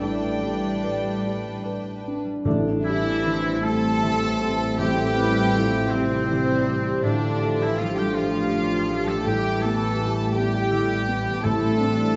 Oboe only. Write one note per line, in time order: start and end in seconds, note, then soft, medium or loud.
2.84 3.65 E4 loud
3.64 4.78 A4 medium
4.79 5.92 G4 medium
5.90 7.02 C4 medium
7.03 7.64 D4 medium
7.62 7.79 E4 medium
7.78 8.00 F4 medium
7.98 8.16 G4 medium
8.14 9.09 F4 medium
9.08 9.26 A4 medium
9.28 9.64 G4 medium
9.63 10.10 A4 medium
10.36 11.46 G4 medium
11.44 12.16 A4 medium